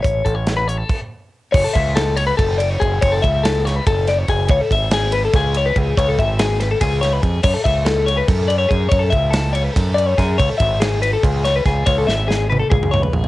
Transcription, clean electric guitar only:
\new Staff \with { instrumentName = "Clean electric guitar" } { \time 7/8 \key fis \minor \tempo 4 = 143 cis''8 a'16 cis''8 b'16 cis''16 a'8 r4 r16 | cis''16 a'16 e''8 a'8 cis''16 b'16 a'8 d''16 cis''16 gis'8 | cis''16 a'16 e''8 a'8 cis''16 b'16 a'8 d''16 cis''16 gis'8 | cis''16 a'16 e''8 gis'8 b'16 a'16 gis'8 cis''16 b'16 gis'8 |
cis''16 a'16 e''8 gis'8 b'16 a'16 gis'8 cis''16 b'16 gis'8 | cis''16 a'16 e''8 a'8 cis''16 b'16 a'8 d''16 cis''16 gis'8 | cis''16 a'16 e''8 a'8 cis''16 b'16 a'8 d''16 cis''16 gis'8 | cis''16 a'16 e''8 gis'8 b'16 a'16 gis'8 cis''16 b'16 gis'8 |
cis''16 a'16 e''8 gis'8 b'16 a'16 gis'8 cis''16 b'16 gis'8 | }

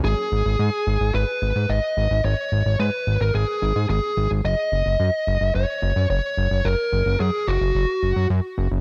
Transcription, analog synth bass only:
\new Staff \with { instrumentName = "Analog synth bass" } { \clef bass \time 4/4 \key gis \minor \tempo 4 = 109 gis,,16 r16 gis,,16 gis,,16 gis,16 r16 gis,,16 gis,,16 gis,,16 r16 gis,,16 gis,16 gis,,16 r16 gis,,16 gis,,16 | gis,,16 r16 gis,,16 gis,,16 gis,16 r16 gis,,16 gis,,16 gis,,16 r16 gis,,16 gis,16 gis,,16 r16 gis,,16 gis,,16 | fis,,16 r16 fis,,16 fis,,16 fis,16 r16 fis,,16 fis,,16 fis,,16 r16 fis,,16 fis,16 fis,,16 r16 fis,,16 fis,,16 | fis,,16 r16 fis,,16 fis,,16 fis,16 r16 fis,,16 fis,,16 fis,,16 r16 fis,,16 fis,16 fis,16 r16 fis,,16 fis,,16 | }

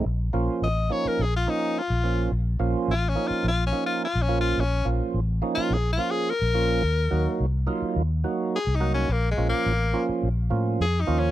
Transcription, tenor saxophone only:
\new Staff \with { instrumentName = "Tenor saxophone" } { \time 4/4 \key bes \minor \tempo 4 = 106 r4 ees''8 des''16 bes'16 aes'16 f'16 ees'8 f'4 | r4 \tuplet 3/2 { f'8 des'8 f'8 f'8 des'8 f'8 f'8 des'8 f'8 } | des'8 r8 \tuplet 3/2 { r4 f'8 aes'8 f'8 aes'8 } bes'4~ | bes'4 r2 \tuplet 3/2 { aes'8 ees'8 des'8 } |
\tuplet 3/2 { bes8 aes8 bes8~ } bes8. r4 r16 \tuplet 3/2 { aes'8 ees'8 des'8 } | }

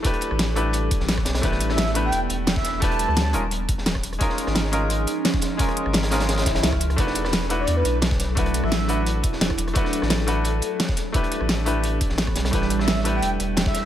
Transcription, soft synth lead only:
\new Staff \with { instrumentName = "Soft synth lead" } { \time 4/4 \key a \mixolydian \tempo 4 = 173 r1 | r8. e''8 r8 g''8 r4 e''8. | a''4. r2 r8 | r1 |
r1 | r8. b'8 r8 d''8 b'8 r4 r16 | r8. e''4 r2 r16 | r1 |
r1 | r8. e''8 r8 g''8 r4 e''8. | }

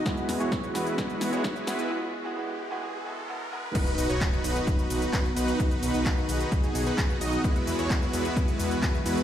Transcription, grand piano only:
\new Staff \with { instrumentName = "Grand piano" } { \time 4/4 \key b \major \tempo 4 = 130 <gis b e' fis'>8. <gis b e' fis'>16 r8 <gis b e' fis'>16 r16 <gis b e' fis'>8. <gis b e' fis'>16 r8 <gis b e' fis'>16 r16 | <gis b e' fis'>8. <gis b e' fis'>16 <gis b e' fis'>8. <gis b e' fis'>16 <gis b e' fis'>8 <gis b e' fis'>8 <gis b e' fis'>8 <gis b e' fis'>8 | r1 | r1 |
r1 | }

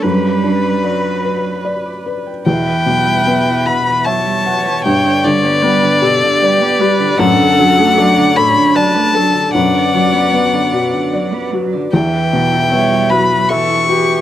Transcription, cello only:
\new Staff \with { instrumentName = "Cello" } { \clef bass \time 3/4 \key e \dorian \tempo 4 = 76 g4 fis4 r4 | b,16 e16 fis16 g16 fis16 e16 b,16 e16 fis16 g16 fis16 e16 | b,16 d16 g16 b16 g16 d16 b,16 d16 g16 b16 g16 d16 | a,16 d16 fis16 a16 fis16 d16 a,16 d16 fis16 a16 fis16 d16 |
b,16 d16 fis16 b16 fis16 d16 b,16 d16 fis16 b16 fis16 d16 | e4 g8 fis8 e4 | }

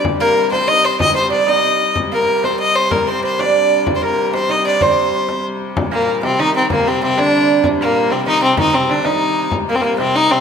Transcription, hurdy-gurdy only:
\new Staff \with { instrumentName = "Hurdy-gurdy" } { \clef bass \time 6/8 \key c \minor \tempo 4. = 127 <c g>2.~ | <c g>2. | <c g>2.~ | <c g>2.~ |
<c g>2.~ | <c g>2. | <c g>2.~ | <c g>2.~ |
<c g>2.~ | <c g>2. | <c g>2. | }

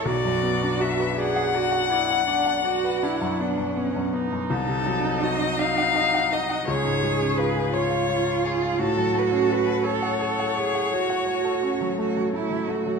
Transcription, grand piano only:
\new Staff \with { instrumentName = "Grand piano" } { \time 12/8 \key fis \minor \tempo 4. = 56 b,,16 fis,16 b16 d'16 fis'16 b'16 d''16 fis''16 d''16 fis''16 d''16 fis''16 d''16 fis''16 d''16 b'16 d'16 fis,16 b16 fis,16 b16 fis,16 b16 fis,16 | c,16 c16 ges16 ees'16 ges'16 ees'16 ees''16 ges''16 ees''16 ges''16 ees''16 ges''16 cis,16 gis,16 gis16 cis'16 eis'16 gis'16 cis''16 eis''16 cis''16 eis''16 cis''16 eis''16 | a,16 fis16 a16 cis'16 fis'16 a'16 cis''16 fis''16 cis''16 fis''16 cis''16 fis''16 cis''16 fis''16 cis''16 a'16 cis'16 fis16 a16 fis16 a16 fis16 a16 fis16 | }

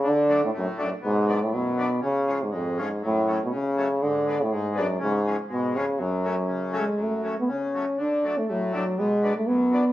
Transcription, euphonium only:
\new Staff \with { instrumentName = "Euphonium" } { \clef bass \time 2/4 \key fis \minor \tempo 4 = 121 d8. a,16 fis,8 fis,8 | gis,8. a,16 b,4 | cis8. gis,16 eis,8 gis,8 | a,8. b,16 cis4 |
d8. a,16 gis,8 fis,8 | gis,8. r16 b,8 cis8 | fis,4. gis8 | a8. b16 cis'4 |
d'8. a16 fis8 fis8 | gis8. a16 b4 | }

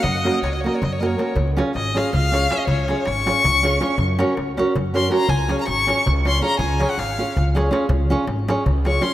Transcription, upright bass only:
\new Staff \with { instrumentName = "Upright bass" } { \clef bass \time 7/8 \key des \major \tempo 4 = 161 ges,4 des,4 ges,4. | des,4 aes,,4 des,4. | des,4 aes,,4 des,4. | ges,4 des,4 ges,4. |
des,4 aes,,4 des,4. | des,4 aes,,4 des,4. | des,4 aes,,4 des,4. | }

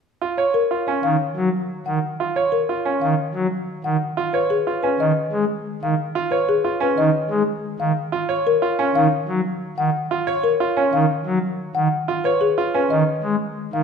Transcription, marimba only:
\new Staff \with { instrumentName = "Marimba" } { \time 6/4 \key fis \major \tempo 4 = 182 r4 cis''8 ais'8 r8 cis''8 eis''8 r2 fis''8 | r4 cis''8 ais'8 r8 cis''8 eis''8 r2 fis''8 | r4 b'8 gis'8 r8 b'8 dis''8 r2 eis''8 | r4 b'8 gis'8 r8 b'8 dis''8 r2 eis''8 |
r4 cis''8 ais'8 r8 cis''8 eis''8 r2 fis''8 | r4 cis''8 ais'8 r8 cis''8 eis''8 r2 fis''8 | r4 b'8 gis'8 r8 b'8 dis''8 r2 eis''8 | }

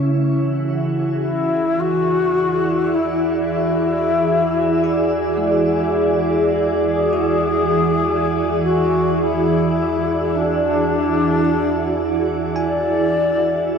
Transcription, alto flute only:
\new Staff \with { instrumentName = "Alto flute" } { \time 3/4 \key e \mixolydian \tempo 4 = 52 r4 e'8 fis'4 e'8 | e'2 r4 | gis'4. fis'8 e'4 | d'4.~ d'16 r16 d''4 | }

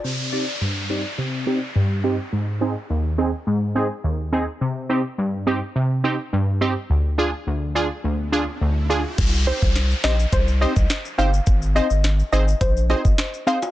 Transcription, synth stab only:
\new Staff \with { instrumentName = "Synth stab" } { \time 4/4 \key c \minor \tempo 4 = 105 << { r8 <c' ees' g'>8 r8 <c' ees' g'>8 r8 <c' ees' g'>8 r8 <c' ees' g'>8 | r8 <c' ees' aes'>8 r8 <c' ees' aes'>8 r8 <c' ees' aes'>8 r8 <c' ees' aes'>8 | r8 <c' ees' g'>8 r8 <c' ees' g'>8 r8 <c' ees' g'>8 r8 <c' ees' g'>8 | r8 <d' f' aes'>8 r8 <d' f' aes'>8 r8 <d' f' aes'>8 r8 <d' f' aes'>8 |
r8 <c' ees' g' c''>8 r8 <c' ees' g' c''>8 r8 <c' ees' g' c''>8 r8 <c' ees' g' c''>8 | r8 <c' ees' aes' c''>8 r8 <c' ees' aes' c''>8 r8 <c' ees' aes' c''>8 r8 <c' ees' aes' c''>8 | } \\ { c4 g,4 c4 g,4 | aes,4 ees,4 aes,4 ees,4 | c4 g,4 c4 g,4 | d,4 d,4 d,4 d,4 |
r1 | r1 | } >> }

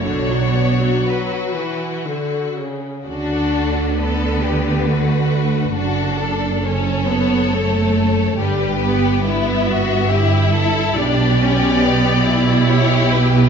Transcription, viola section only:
\new Staff \with { instrumentName = "Viola section" } { \time 3/4 \key b \minor \tempo 4 = 69 << { d'4 fis8 e8 d8 cis8 | \key d \major r2. | r2. | r2. |
r2. | } \\ { d16 fis16 b16 fis16 r2 | d'4 b4 a4 | d'4 cis'8 b8 a4 | g8 b8 b4 e'4 |
d'8 cis'8 b8 e'4. | } >> }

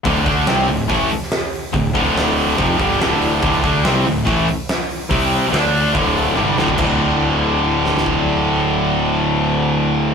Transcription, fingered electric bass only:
\new Staff \with { instrumentName = "Fingered electric bass" } { \clef bass \time 4/4 \key c \lydian \tempo 4 = 142 d,,8 d,8 c,8 d,,8 a,,8 r4. | d,,8 d,,4. f,,8 g,,8 d,,4 | d,,8 d,8 c,8 d,,8 a,,8 r4. | c,4 d,4 d,,4 g,,8 d,,8 |
d,,1~ | d,,1 | }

